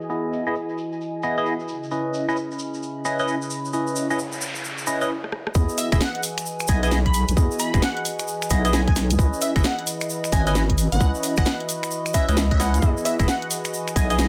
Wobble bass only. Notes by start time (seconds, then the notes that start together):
5.55 E2
5.92 E1
6.69 B1
7.29 B1
7.37 E2
7.74 E1
8.51 B1
9.10 C#2
9.19 C#2
9.56 G#1
10.32 G#1
10.92 G#1
11.01 C#2
11.38 G#1
12.28 C#2
12.82 E2
13.19 E1
13.96 B1